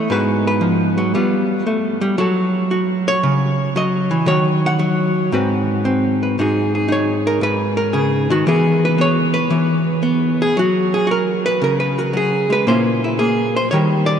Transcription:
0.10 1.13 G#2 medium
0.10 0.97 G#3 soft
0.10 1.14 B3 soft
0.10 1.13 F#4 soft
0.10 0.46 B4 medium
0.47 2.19 B4 medium
0.61 0.97 F3 medium
0.98 1.13 F#3 medium
1.15 1.66 G3 medium
1.15 2.18 B3 soft
1.15 2.17 F4 soft
1.67 2.01 A3 medium
2.01 2.17 G3 medium
2.18 3.75 F#3 medium
2.18 2.71 F#4 soft
2.18 4.25 A4 soft
2.18 3.07 C#5 soft
2.71 4.27 F#4 medium
3.08 3.75 C#5 loud
3.23 4.25 C#3 medium
3.76 4.11 F#3 medium
3.76 4.28 D#5 medium
4.11 4.27 E3 medium
4.26 5.29 D#3 medium
4.26 4.78 F#3 soft
4.26 5.29 F#4 medium
4.26 5.15 C#5 medium
4.66 6.38 F#5 medium
4.79 5.31 F#3 medium
5.32 6.38 G#2 medium
5.32 5.84 C4 soft
5.32 6.35 F#4 soft
5.32 6.21 B4 soft
5.85 6.35 C4 medium
6.23 6.35 B4 soft
6.39 7.40 G#2 medium
6.39 6.87 D#4 soft
6.39 8.31 F#4 soft
6.39 6.75 G#4 soft
6.75 7.93 G#4 soft
6.88 8.43 D#4 medium
6.88 7.26 C#5 medium
7.27 7.42 A#4 medium
7.41 8.46 G#2 medium
7.41 7.77 B4 medium
7.77 7.93 A#4 medium
7.93 8.29 C#3 medium
7.93 8.29 G#4 medium
8.30 8.46 D#3 medium
8.30 8.46 F#4 medium
8.47 9.49 E3 medium
8.47 8.97 B3 soft
8.47 8.83 G#4 medium
8.85 8.99 B4 medium
8.98 9.50 B3 medium
8.98 9.33 C#5 medium
9.34 9.86 B4 medium
9.50 10.53 E3 medium
9.50 10.01 B3 soft
10.03 10.55 B3 medium
10.42 10.56 G#4 medium
10.57 12.12 F#3 medium
10.57 10.93 F#4 medium
10.94 11.09 G#4 medium
11.07 11.96 F#4 medium
11.11 11.45 A#4 medium
11.46 11.61 B4 loud
11.62 12.65 C#3 medium
11.62 11.79 A#4 medium
11.80 11.99 B4 medium
11.98 12.64 F#4 soft
11.98 12.14 A#4 medium
12.13 12.49 F#3 medium
12.13 12.51 G#4 medium
12.50 12.65 G#3 medium
12.50 12.67 B4 medium
12.67 13.69 A#2 medium
12.67 13.18 A#3 soft
12.67 13.69 C#4 soft
12.67 13.03 E4 soft
12.67 13.02 C5 medium
13.04 13.19 E4 medium
13.19 13.69 A#3 medium
13.19 13.54 G#4 medium
13.56 13.70 C5 medium
13.71 14.20 D#3 medium
13.71 14.20 G3 soft
13.71 14.20 G4 soft
13.71 14.20 A#4 soft
13.71 14.06 C#5 medium
14.06 14.20 D5 medium

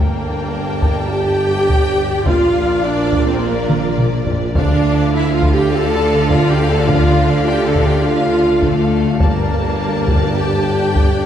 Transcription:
0.00 2.09 G1 medium
0.00 2.23 G1 medium
0.00 2.23 G2 medium
0.00 1.11 A#3 medium
0.00 1.12 A#3 medium
0.00 4.52 D4 medium
0.00 2.26 G4 medium
0.00 1.12 A#4 medium
0.00 4.55 D5 medium
0.00 2.23 G5 medium
0.00 2.22 A5 medium
0.82 taiko medium
1.09 2.07 G4 loud
1.09 2.27 G4 loud
1.09 2.26 G5 loud
1.69 taiko medium
2.24 4.52 A#1 medium
2.24 4.59 A#1 medium
2.24 4.53 A#2 medium
2.24 2.82 F4 loud
2.24 2.83 F4 loud
2.24 4.55 F4 loud
2.24 4.56 A#4 loud
2.24 4.53 D5 medium
2.24 2.84 F5 loud
2.24 taiko loud
2.83 3.27 D4 loud
2.83 3.28 D5 loud
3.12 taiko medium
3.25 3.41 C4 loud
3.25 3.41 C4 medium
3.25 3.43 C5 medium
3.39 3.98 A#3 loud
3.39 3.99 A#3 medium
3.39 4.00 A#4 loud
3.69 taiko mid medium
3.98 taiko low-mid medium
4.27 taiko low medium
4.54 9.21 D2 loud
4.54 9.04 D2 medium
4.54 9.21 D3 loud
4.54 5.09 D4 loud
4.54 9.16 D4 loud
4.54 5.11 D4 loud
4.54 9.16 F4 loud
4.54 9.20 A4 loud
4.54 9.16 D5 loud
4.54 5.11 D5 loud
4.54 9.16 F5 medium
4.54 taiko loud
5.14 5.34 E4 loud
5.14 5.34 E5 loud
5.34 5.53 F4 loud
5.34 5.53 F5 medium
5.43 taiko medium
5.53 5.72 G4 loud
5.53 5.73 G5 loud
5.71 6.30 A4 loud
5.71 6.31 A4 loud
5.71 6.30 A5 loud
6.30 6.49 F4 loud
6.30 6.51 F4 loud
6.30 6.49 F5 loud
6.30 taiko medium
6.49 6.69 G4 loud
6.49 6.70 G4 loud
6.49 6.69 G5 loud
6.68 6.88 A4 loud
6.68 6.89 A4 loud
6.68 6.89 A5 loud
6.86 7.46 F4 loud
6.86 7.47 F5 loud
6.86 taiko loud
7.46 7.66 G4 loud
7.46 7.65 G4 loud
7.46 7.65 G5 loud
7.65 7.86 A4 loud
7.65 7.85 A5 medium
7.75 taiko medium
7.83 8.05 G4 medium
7.83 8.05 G4 loud
7.83 8.04 G5 medium
8.03 8.63 F4 loud
8.03 8.62 F5 loud
8.62 9.21 A3 medium
8.62 9.21 A3 loud
8.62 9.20 A4 loud
8.62 taiko medium
9.20 11.26 G1 medium
9.20 11.26 G2 medium
9.20 10.36 A#3 loud
9.20 11.26 D4 medium
9.20 11.26 G4 loud
9.20 10.35 A#4 loud
9.20 11.26 D5 loud
9.20 11.26 A5 medium
9.20 taiko loud
10.08 taiko medium
10.36 11.26 G4 loud
10.36 11.26 G5 loud
10.96 taiko medium

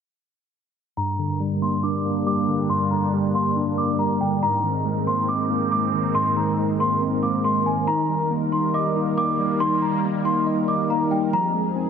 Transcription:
0.97 2.05 G2 loud
0.97 4.39 G3 medium
0.97 4.39 A#3 medium
0.97 4.39 D4 medium
0.97 11.29 A#4 medium
0.97 1.38 A#5 loud
1.19 2.27 D3 medium
1.40 2.26 G3 medium
1.62 2.04 A#3 medium
1.62 1.81 C6 medium
1.83 2.91 D4 medium
1.83 2.24 D6 medium
2.05 3.13 A#3 medium
2.27 3.12 G3 medium
2.27 2.67 D6 medium
2.48 2.90 D3 medium
2.70 3.78 G2 medium
2.70 2.89 C6 loud
2.91 3.99 D3 medium
2.91 3.10 A#5 medium
3.13 3.98 G3 medium
3.35 3.76 A#3 medium
3.35 3.54 C6 medium
3.56 4.43 D4 loud
3.78 4.42 A#3 medium
3.78 3.97 D6 medium
3.99 4.42 G3 medium
3.99 4.18 A#5 medium
4.21 4.43 D3 medium
4.21 4.40 G5 medium
4.43 5.51 G#2 loud
4.43 7.84 G#3 medium
4.43 7.84 C4 medium
4.43 11.90 D#4 medium
4.43 4.83 A#5 loud
4.64 5.72 D#3 medium
4.85 5.71 G#3 medium
5.07 5.49 A#3 medium
5.07 5.26 C6 medium
5.28 6.37 C4 medium
5.28 5.69 D6 medium
5.50 6.58 A#3 medium
5.72 6.58 G#3 medium
5.72 6.12 D6 medium
5.94 6.36 D#3 medium
6.15 7.23 G#2 medium
6.15 6.34 C6 loud
6.37 7.45 D#3 medium
6.37 6.55 A#5 medium
6.59 7.43 G#3 medium
6.80 7.22 A#3 medium
6.80 6.99 C6 medium
7.02 7.88 C4 medium
7.23 7.88 A#3 medium
7.23 7.42 D6 medium
7.44 7.88 G#3 medium
7.44 7.63 C6 medium
7.66 7.87 D#3 medium
7.66 7.85 G#5 medium
7.87 8.96 D#3 loud
7.87 11.30 G3 medium
7.87 11.30 A#3 medium
7.87 8.28 A#5 loud
8.10 9.17 G3 medium
8.31 9.16 A#3 medium
8.52 8.95 D#4 medium
8.52 8.71 C6 medium
8.74 9.82 D#5 loud
8.74 9.15 D6 medium
8.96 10.04 D#4 medium
9.18 10.03 A#3 medium
9.18 9.58 D6 medium
9.40 9.81 G3 medium
9.60 10.68 D#3 medium
9.60 9.79 C6 loud
9.82 10.90 G3 medium
9.82 10.01 A#5 medium
10.04 10.89 A#3 medium
10.25 10.67 D#4 medium
10.25 10.44 C6 medium
10.46 11.33 D#5 medium
10.68 11.33 D#4 medium
10.68 10.87 D6 medium
10.90 11.33 A#3 medium
10.90 11.09 A#5 medium
11.11 11.33 G3 medium
11.11 11.30 G5 medium
11.33 11.90 F3 medium
11.33 11.90 C4 medium
11.33 11.90 G#4 medium
11.33 11.74 A#5 loud
11.54 11.90 G#3 medium
11.76 11.90 C4 medium

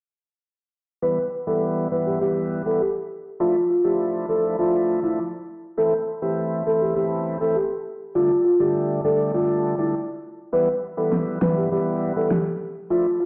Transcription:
1.02 1.19 E3 medium
1.02 1.19 G3 medium
1.02 1.19 B3 medium
1.02 1.19 E4 loud
1.02 1.24 B4 medium
1.47 1.88 E3 medium
1.47 1.88 G3 medium
1.47 1.88 B3 medium
1.47 1.88 E4 medium
1.47 1.58 A4 medium
1.92 2.19 E3 medium
1.92 2.19 G3 medium
1.92 2.19 B3 medium
1.92 2.19 E4 medium
1.92 2.02 B4 medium
2.07 2.17 G4 medium
2.21 2.62 E3 medium
2.21 2.62 G3 medium
2.21 2.62 B3 medium
2.21 2.63 E4 loud
2.21 2.32 G4 medium
2.66 2.82 E3 medium
2.66 2.82 G3 medium
2.66 2.82 B3 medium
2.66 2.82 E4 medium
2.66 2.77 A4 medium
2.81 3.23 G4 medium
3.40 3.56 F3 medium
3.40 3.56 A3 medium
3.40 3.56 D4 medium
3.40 3.56 E4 medium
3.40 3.51 F4 medium
3.70 3.81 F4 medium
3.84 4.26 F3 medium
3.84 4.26 A3 medium
3.84 4.26 D4 medium
3.84 4.26 E4 medium
3.84 3.95 G4 medium
4.29 4.57 F3 medium
4.29 4.57 A3 medium
4.29 4.57 D4 medium
4.29 4.57 E4 medium
4.29 4.40 A4 medium
4.59 5.00 F3 medium
4.59 5.00 A3 medium
4.59 5.00 D4 medium
4.59 5.00 E4 loud
4.59 4.70 F4 medium
5.03 5.19 F3 medium
5.03 5.20 A3 medium
5.03 5.20 D4 medium
5.03 5.14 E4 medium
5.03 5.20 E4 medium
5.77 5.94 E3 medium
5.77 5.94 A3 medium
5.77 5.94 C4 medium
5.77 5.94 E4 medium
5.77 5.99 A4 medium
6.22 6.63 E3 medium
6.22 6.63 A3 medium
6.22 6.63 C4 medium
6.22 6.63 E4 medium
6.22 6.33 G4 medium
6.67 6.94 E3 medium
6.67 6.94 A3 medium
6.67 6.94 C4 medium
6.67 6.94 E4 medium
6.67 6.77 A4 medium
6.82 6.92 G4 medium
6.96 7.37 E3 medium
6.96 7.37 A3 medium
6.96 7.38 C4 medium
6.96 7.38 E4 loud
6.96 7.07 G4 medium
7.41 7.57 E3 medium
7.41 7.57 A3 medium
7.41 7.57 C4 medium
7.41 7.57 E4 medium
7.41 7.52 A4 medium
7.56 7.98 G4 medium
8.15 8.31 D3 medium
8.15 8.31 G3 medium
8.15 8.32 A3 medium
8.15 8.32 D4 medium
8.15 8.26 F4 loud
8.45 8.56 F4 medium
8.60 9.01 D3 medium
8.60 9.01 G3 medium
8.60 9.01 A3 medium
8.60 9.01 D4 medium
8.60 8.71 G4 medium
9.04 9.32 D3 medium
9.04 9.32 G3 medium
9.04 9.32 A3 medium
9.04 9.32 D4 medium
9.04 9.15 A4 medium
9.34 9.75 D3 medium
9.34 9.75 G3 medium
9.34 9.75 A3 medium
9.34 9.75 D4 loud
9.34 9.45 F4 medium
9.78 9.95 D3 medium
9.78 9.95 G3 medium
9.78 9.95 A3 medium
9.78 9.95 D4 medium
9.78 9.89 E4 medium
10.53 10.69 E3 medium
10.53 10.69 G3 medium
10.53 10.69 B3 medium
10.53 10.69 E4 loud
10.53 10.74 B4 loud
10.97 11.38 E3 medium
10.97 11.38 G3 medium
10.97 11.39 B3 medium
10.97 11.39 E4 medium
10.97 11.08 A4 medium
11.12 snare medium
11.41 11.69 E3 medium
11.41 11.69 G3 medium
11.41 11.69 B3 medium
11.41 11.70 E4 medium
11.41 11.53 B4 medium
11.41 finger snap medium
11.41 snare loud
11.57 11.68 G4 medium
11.72 12.13 E3 medium
11.72 12.13 G3 medium
11.72 12.13 B3 medium
11.72 12.13 E4 medium
11.72 11.83 G4 medium
12.16 12.32 E3 medium
12.16 12.32 G3 medium
12.16 12.33 B3 medium
12.16 12.33 E4 medium
12.16 12.27 A4 medium
12.31 12.73 G4 medium
12.31 finger snap medium
12.31 snare loud
12.90 13.07 F3 medium
12.90 13.07 A3 medium
12.90 13.07 D4 medium
12.90 13.07 E4 loud
12.90 13.01 F4 loud
13.20 13.26 F4 medium

